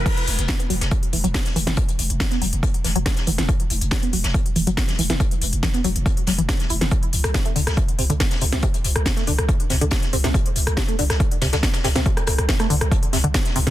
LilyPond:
<<
  \new Staff \with { instrumentName = "Synth arpeggio sound" } { \clef bass \time 4/4 \key c \lydian \tempo 4 = 140 e16 r8. e16 b16 fis16 r8. e16 fis16 r8 e16 e16 | e16 r8. e16 b16 fis16 r8. e16 fis16 r8 e16 e16 | e16 r8. e16 b16 fis16 r8. e16 fis16 r8 e16 e16 | e16 r8. e16 b16 fis16 r8. fis16 e16 r8 e'16 e16 |
c16 r8. c16 a16 d16 r8. c16 d16 r8 c16 c16 | c16 r8. c16 a16 d16 r8. c16 d16 r8 c16 c16 | c16 r8. c16 a16 d16 r8. c16 d16 r8 c16 c16 | c16 r8. c16 a16 d16 r8. c16 d16 r8 c16 c16 | }
  \new Staff \with { instrumentName = "808-style bass" } { \clef bass \time 4/4 \key c \lydian r8 e,,16 e,,16 r8 e,,16 e,,16 r8 e,,16 e,,16 r8 e,,16 e,,16 | r8 e,,16 e,,16 r8 e,,16 e,,16 r8 e,,16 e,,16 r8 e,,16 e,,16 | r8 e,,16 e,,16 r8 e,,16 e,,16 r8 e,,16 e,,16 r8 e,,16 e,,16 | r8 e,,16 e,,16 r8 e,,16 e,,16 r8 e,,16 e,,16 r8 e,,16 e,,16 |
r8 c,16 c,16 r8 c,16 c,16 r8 c,16 c,16 r8 c,16 c,16 | r8 c,16 c,16 r8 c,16 c,16 r8 c,16 c,16 r8 c,16 c,16 | r8 c,16 c,16 r8 c,16 c,16 r8 c,16 c,16 r8 c,16 c,16 | r8 c,16 c,16 r8 c,16 c,16 r8 c,16 c,16 r8 c,16 c,16 | }
  \new DrumStaff \with { instrumentName = "Drums" } \drummode { \time 4/4 <cymc hh bd>16 hh16 <hh hho>16 hh16 <hh bd sn>16 hh16 <hh hho>16 <hh sn>16 <hh bd>16 hh16 <hh hho>16 hh16 <hh hho bd sn>16 <hh sn>16 <hh hho>16 <hh sn>16 | <hh bd>16 hh16 <hh hho>16 hh16 <hh bd sn>16 <hh sn>16 <hh hho>16 hh16 <hh bd>16 hh16 <hh hho sn>16 hh16 <hh bd sn>16 <hh sn>16 <hh hho>16 <hh sn>16 | <hh bd>16 hh16 <hh hho>16 hh16 <hh bd sn>16 hh16 <hh hho>16 <hh sn>16 <hh bd>16 hh16 <hh hho>16 hh16 <hh hho bd sn>16 <hh sn>16 <hh hho>16 <hh sn>16 | <hh bd>16 hh16 <hh hho>16 hh16 <hh bd sn>16 <hh sn>16 <hh hho>16 hh16 <hh bd>16 hh16 <hh hho sn>16 hh16 <hh bd sn>16 <hh sn>16 <hh hho>16 <hh sn>16 |
<hh bd>16 hh16 <hh hho>16 <hh ss>16 <hh bd sn>16 hh16 <hh hho>16 <hh ss sn>16 <hh bd>16 hh16 <hh hho>16 hh16 <hh hho bd sn>16 <hh sn>16 <hh hho>16 <hh sn>16 | <hh bd>16 hh16 <hh hho>16 <hh ss>16 <hh bd sn>16 <hh sn>16 <hh hho>16 <hh ss>16 <hh bd>16 hh16 <hh hho sn>16 hh16 <hh bd sn>16 <hh sn>16 <hh hho>16 <hh sn>16 | <hh bd>16 hh16 <hh hho>16 <hh ss>16 <hh bd sn>16 hh16 <hh hho>16 <hh ss sn>16 <hh bd>16 hh16 <hh hho sn>16 <hh sn>16 <hh bd sn>16 <hh sn>16 <hh hho sn>16 <hh sn>16 | <hh bd>16 <hh ss>16 <hh hho ss>16 <hh ss>16 <hh bd sn>16 <hh ss sn>16 <hh hho>16 <hh ss>16 <hh bd>16 hh16 <hh hho sn>16 hh16 <hh bd sn>16 <hh sn>16 <hh hho>16 <hh sn>16 | }
>>